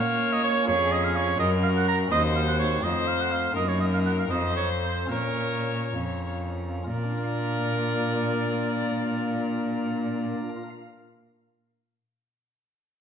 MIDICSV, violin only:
0, 0, Header, 1, 2, 480
1, 0, Start_track
1, 0, Key_signature, -5, "minor"
1, 0, Tempo, 480384
1, 690, Time_signature, 6, 3, 24, 8
1, 4054, Tempo, 537153
1, 5494, Tempo, 610998
1, 6454, Tempo, 645161
1, 11006, End_track
2, 0, Start_track
2, 0, Title_t, "Violin"
2, 0, Program_c, 0, 40
2, 0, Note_on_c, 0, 73, 97
2, 689, Note_off_c, 0, 73, 0
2, 695, Note_on_c, 0, 68, 105
2, 1393, Note_off_c, 0, 68, 0
2, 1404, Note_on_c, 0, 70, 102
2, 2111, Note_on_c, 0, 72, 99
2, 2126, Note_off_c, 0, 70, 0
2, 2822, Note_off_c, 0, 72, 0
2, 2828, Note_on_c, 0, 72, 106
2, 3540, Note_off_c, 0, 72, 0
2, 3553, Note_on_c, 0, 70, 89
2, 4271, Note_on_c, 0, 72, 95
2, 4285, Note_off_c, 0, 70, 0
2, 4987, Note_off_c, 0, 72, 0
2, 4992, Note_on_c, 0, 73, 82
2, 6060, Note_off_c, 0, 73, 0
2, 6458, Note_on_c, 0, 74, 89
2, 9030, Note_off_c, 0, 74, 0
2, 11006, End_track
0, 0, End_of_file